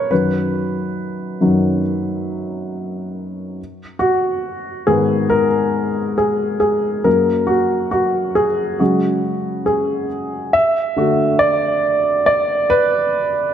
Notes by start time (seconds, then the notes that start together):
Already playing: A#4 B4 C#5
0.11 F#2 D#3 F#3 B4
1.41 F#2 D#3 F#3
3.99 F#4
4.87 G#2 D#3 B3 G#4
5.30 A#4
6.18 G#4
6.60 G#4
7.04 F#2 F#3 A#3 A#4
7.47 F#4
7.91 F#4
8.35 G#4
8.79 C#3 F#3 G#3 F#4
9.66 G#4
10.53 E5
10.96 D3 A3 F#4
11.39 D5
12.26 D5
12.70 B4